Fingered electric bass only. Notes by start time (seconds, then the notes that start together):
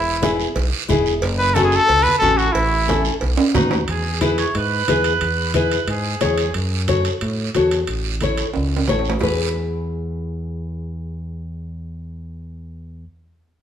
Already playing: E1
0.56 B1
0.90 E1
1.23 F#1
1.90 C#2
2.22 A1
2.55 A1
3.22 B1
3.55 D#2
3.89 E2
4.55 G#2
4.89 E2
5.21 E2
5.87 G#2
6.22 E2
6.55 F#2
7.22 A2
7.55 E2
7.88 A1
8.56 C#2
8.90 A1
9.22 E2